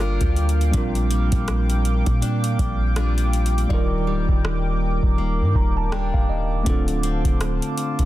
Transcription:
Already playing: 808-style bass G1, tine electric piano G3 A#3 D4 F4 A4, steel-string acoustic guitar G3, analog synth pad A#3 F5 G5 D6
0.00 steel-string acoustic guitar D4 F4 A#4
0.21 808-style bass D2, kick, closed hi-hat
0.36 closed hi-hat
0.49 closed hi-hat
0.61 closed hi-hat
0.71 808-style bass A#1, steel-string acoustic guitar A#2, tine electric piano G3 C4 D4, kick, closed hi-hat
0.76 tine electric piano F4 A#4
0.95 closed hi-hat
1.11 steel-string acoustic guitar G3, closed hi-hat
1.32 808-style bass A#1, kick, closed hi-hat
1.48 cross-stick, closed hi-hat
1.70 closed hi-hat
1.85 closed hi-hat
2.06 808-style bass A#2, kick, closed hi-hat
2.22 steel-string acoustic guitar D4, closed hi-hat
2.44 closed hi-hat
2.59 808-style bass A#1, kick, closed hi-hat
2.96 steel-string acoustic guitar G3 D4 F4, cross-stick, closed hi-hat
3.18 closed hi-hat
3.33 closed hi-hat
3.46 closed hi-hat
3.58 closed hi-hat
3.68 808-style bass D#1, steel-string acoustic guitar D#3, tine electric piano G3 D#4 D5, analog synth pad A#4, kick
3.73 tine electric piano F4 A#4
4.07 808-style bass D1, steel-string acoustic guitar G3
4.29 808-style bass D#1, kick
4.45 cross-stick
5.03 808-style bass D#1, kick
5.18 steel-string acoustic guitar A#3
5.41 808-style bass G2
5.55 808-style bass D#1, tine electric piano A#5, kick
5.77 tine electric piano A5
5.92 steel-string acoustic guitar G3 A#3 D4, tine electric piano G5, cross-stick
6.14 808-style bass D#1, tine electric piano F5, kick
6.29 tine electric piano D#5
6.63 808-style bass D1, steel-string acoustic guitar D3, tine electric piano A3 C4 D4, analog synth pad C5 F5 A5, kick, closed hi-hat
6.68 tine electric piano F4 A4
6.88 closed hi-hat
7.03 steel-string acoustic guitar C4, closed hi-hat
7.25 808-style bass D1, kick, closed hi-hat
7.41 cross-stick, closed hi-hat
7.62 closed hi-hat
7.78 closed hi-hat
7.99 808-style bass D1, kick, closed hi-hat

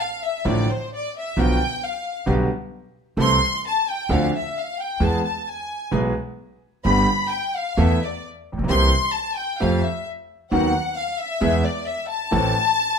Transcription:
0.00 violin section F5
0.24 violin section E5
0.45 grand piano A1 A2 D3 F3 A3 E4, upright bass A1, violin section D5
0.70 violin section C5
0.95 violin section D5
1.18 violin section E5
1.36 upright bass B1, grand piano B1 B2 D3 F3 B3 F4, violin section G5
1.84 violin section F5
2.26 grand piano B1 B2 D3 G3 B3 G4, upright bass B1
3.17 upright bass C2, grand piano C2 C3 E3 A3 C4 A4, violin section C6
3.67 violin section A5
3.89 violin section G5
4.09 upright bass D2, grand piano D2 D3 F3 C4 D4 A4, violin section F5
4.35 violin section E5
4.56 violin section F5
4.80 violin section G5
5.00 upright bass E2, grand piano E2 E3 G#3 B3 G#4, violin section A5
5.25 violin section A5
5.48 violin section G#5
5.91 grand piano B1 B2 E3 G#3 B3 G#4, upright bass B1
6.84 upright bass G1, grand piano G1 G2 D3 G3 B3 G4, violin section B5
7.30 violin section G5
7.55 violin section F5
7.77 upright bass E2, grand piano E2 E3 A3 B3 A4, violin section E5
8.03 violin section D5
8.52 grand piano A1, upright bass A1
8.57 grand piano A#1, upright bass A#1
8.64 grand piano B1, upright bass B1
8.69 grand piano C2 C3 E3 A#3 C4 G4, upright bass C2, violin section C6
9.13 violin section A5
9.35 violin section G5
9.60 grand piano F2 F3 A3 C4 G4, upright bass F2, violin section F5
9.83 violin section E5
10.51 upright bass D#2, grand piano D#2 D#3 F#3 B3 F#4, violin section F#5
10.97 violin section F5
11.19 violin section E5
11.41 grand piano E2 E3 G#3 B3 G#4, upright bass E2
11.64 violin section D5
11.86 violin section E5
12.09 violin section A5
12.31 grand piano A1 A2 E3 A3 C4 A4, upright bass A1

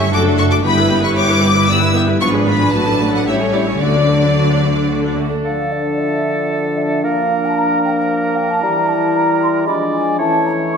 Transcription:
Already playing: double bass section G1, cello section G2, violin section E5 C#6
0.00 viola section E4 G4
0.11 double bass section F#1, cello section F#2, french horn section A3 D4, viola section F#4 A4, violin section A4 D6
0.25 viola section D4 F#4
0.38 viola section F#4 A4, violin section C#6
0.51 viola section D4 F#4, violin section D6
0.64 double bass section G1, cello section G2, french horn section G3 E4, viola section B3 G4, violin section B4 B5
0.77 viola section E4 B4
0.90 viola section B3 G4
1.03 viola section E4 B4, violin section C#6
1.16 viola section B3 G4, violin section C#5 D6
1.29 viola section E4 B4
1.43 viola section B3 G4, violin section B4
1.56 viola section E4 B4
1.69 french horn section G3 E4, viola section B3 G4, violin section D5 E6
1.82 viola section E4 B4
1.94 viola section B3 G4, violin section E5
2.08 viola section E4 B4
2.20 double bass section G#1, cello section G#2, french horn section F3 D4, viola section B3 F4, violin section B4 C#6
2.34 viola section D4 G#4
2.47 viola section B3 F4, violin section B5
2.61 viola section D4 G#4
2.72 double bass section A1, cello section A2, french horn section F#3 D4, viola section A3 F#4, violin section A5
2.87 viola section D4 A4
3.00 viola section A3 F#4
3.13 viola section D4 A4, violin section F#5
3.27 french horn section G3 C#4, viola section E4 G4, violin section C#5 E5
3.40 viola section C#4 A4
3.53 viola section E4 G4, violin section D5
3.66 viola section C#4 A4, violin section C#5
3.80 double bass section D2, cello section D3, french horn section F#3 D4, viola section A3 F#4, violin section D5
3.94 viola section D4 A4
4.09 viola section A3 F#4
4.22 viola section D4 A4
4.36 viola section A3 F#4
4.49 viola section D4 A4
4.62 viola section A3 F#4
4.76 viola section D4 A4
4.90 viola section A3 F#4
5.03 viola section D4 A4
5.17 viola section A3 F#4
5.31 viola section D4 A4
5.44 bassoon D3, french horn section F3 D4, clarinet D4, oboe A4, flute section F5
5.72 flute section D5
5.98 flute section E5
6.51 flute section D5
6.77 flute section E5
7.04 bassoon A#3, oboe A#4, flute section F5
7.44 flute section A5
7.57 flute section A#5
7.83 flute section G5
8.09 flute section F5
8.35 flute section G5
8.49 flute section A5
8.61 french horn section E3 E4, bassoon G3, clarinet E4, flute section A#5
8.88 flute section A5
9.14 flute section A#5
9.40 flute section C6
9.67 french horn section F3 D4, bassoon G#3, clarinet F4, oboe D5, flute section B5
9.93 flute section G#5
10.19 french horn section E3 C#4, bassoon A3, clarinet E4, oboe C#5, flute section A5
10.46 flute section A#5
10.72 flute section C#6

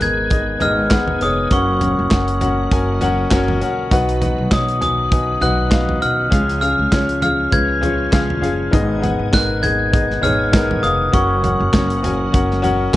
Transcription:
Already playing: upright bass G#1, grand piano G#2 D#3 A#4 D#5, tonewheel organ D#3 G#3 B3 G#4
0.00 grand piano B3 D#4 G#4 A#4, glockenspiel G#6, closed hi-hat, floor tom
0.30 grand piano B3 D#4 G#4 D#5, kick, closed hi-hat
0.59 upright bass G#1, grand piano B3 D#4 G#4 D#5, glockenspiel F6, closed hi-hat, floor tom
0.90 grand piano B3 D#4 G#4 F#5, kick, snare, clap, closed hi-hat
1.07 floor tom
1.21 upright bass F1, grand piano B3 D#4 G#4 C#5, glockenspiel D#6, closed hi-hat
1.51 upright bass F#1, tonewheel organ C#3 F#3 A#3 F#4, grand piano C#3 C#4 F#4 A#4 F#5, glockenspiel C#6, kick, closed hi-hat
1.81 grand piano C#4 F#4 A#4 F#5, closed hi-hat, floor tom
1.99 upright bass F#1
2.11 upright bass F#1, grand piano C#4 F#4 A#4 F#5, kick, snare, clap, closed hi-hat
2.28 closed hi-hat
2.40 grand piano C#4 F#4 A#4 F#5, closed hi-hat, floor tom
2.71 upright bass F#1, grand piano C#4 F#4 A#4 G#5, kick, closed hi-hat
3.01 grand piano C#4 F#4 A#4 F#5, closed hi-hat, floor tom
3.30 upright bass F#1, grand piano C#4 F#4 A#4 C#5, kick, snare, clap, closed hi-hat
3.48 floor tom
3.61 upright bass A#1, grand piano C#4 F#4 A#4 F#5, closed hi-hat
3.91 upright bass B1, grand piano B2 F#3 D#4 F#4 B4 F#5, tonewheel organ D#3 F#3 B3, kick, closed hi-hat
4.09 closed hi-hat
4.21 grand piano D#4 F#4 B4 F#5, closed hi-hat, floor tom
4.38 upright bass B1
4.51 upright bass B1, grand piano D#4 F#4 B4 C#5, glockenspiel D#6, kick, snare, clap, closed hi-hat
4.69 closed hi-hat
4.80 grand piano D#4 F#4 B4 G#5, glockenspiel D#6, closed hi-hat, floor tom
5.11 grand piano D#4 F#4 B4 G#5, kick, closed hi-hat
5.41 upright bass B1, grand piano D#4 F#4 B4 F#5, glockenspiel F#6, closed hi-hat, floor tom
5.70 grand piano D#4 F#4 B4 F5, kick, snare, clap, closed hi-hat
5.89 floor tom
6.00 upright bass B1, grand piano D#4 F#4 B4 F#5, glockenspiel F6, closed hi-hat
6.30 upright bass C#2, grand piano C#3 G#3 C#4 F4 G#4 F5, tonewheel organ C#3 F3 G#3 F4, kick, closed hi-hat
6.50 closed hi-hat
6.61 grand piano C#4 F4 G#4 F5, glockenspiel F6, closed hi-hat
6.79 upright bass C#2
6.92 upright bass C#2, grand piano C#4 F4 G#4 C#5, kick, snare, clap, closed hi-hat
7.09 closed hi-hat
7.21 grand piano C#4 F4 G#4 F5, glockenspiel F6, closed hi-hat, floor tom
7.51 upright bass C#2, grand piano C#4 F4 G#4 B4, glockenspiel G#6, kick, closed hi-hat
7.81 grand piano C#4 F4 G#4 C#5, closed hi-hat, floor tom
8.11 upright bass C#2, grand piano C#4 F4 G#4 F5, kick, snare, clap, closed hi-hat
8.30 floor tom
8.41 upright bass F#1, grand piano C#4 F4 G#4 F5, closed hi-hat
8.71 upright bass G#1, grand piano G#2 D#3 B3 D#4 G#4 D#5, tonewheel organ B2 D#3 D#4, kick, closed hi-hat
9.00 grand piano B3 D#4 G#4 F#5, closed hi-hat, floor tom
9.19 upright bass G#1
9.31 upright bass G#1, grand piano B3 D#4 G#4 A#4, glockenspiel F#6, kick, snare, clap, closed hi-hat
9.62 grand piano B3 D#4 G#4 D#5, glockenspiel G#6, closed hi-hat, floor tom
9.92 grand piano B3 D#4 G#4 D#5, kick, closed hi-hat
10.10 snare
10.21 upright bass G#1, grand piano B3 D#4 G#4 C#5, glockenspiel F6, closed hi-hat, floor tom
10.52 grand piano B3 D#4 G#4 A#4, kick, snare, clap, closed hi-hat
10.71 floor tom
10.82 upright bass F1, grand piano B3 D#4 G#4 F5, glockenspiel D#6, closed hi-hat
11.12 upright bass F#1, tonewheel organ C#3 F#3 A#3 F#4, grand piano C#3 C#4 F#4 A#4 F#5, glockenspiel C#6, kick, closed hi-hat
11.42 grand piano C#4 F#4 A#4 F#5, closed hi-hat, floor tom
11.60 upright bass F#1
11.72 upright bass F#1, grand piano C#4 F#4 A#4 C#5, kick, snare, clap, closed hi-hat
11.90 closed hi-hat
12.03 grand piano C#4 F#4 A#4 G#5, closed hi-hat, floor tom
12.32 upright bass F#1, grand piano C#4 F#4 A#4 F#5, kick, closed hi-hat
12.51 snare
12.62 grand piano C#4 F#4 A#4 F#5, closed hi-hat, floor tom
12.93 grand piano C#4

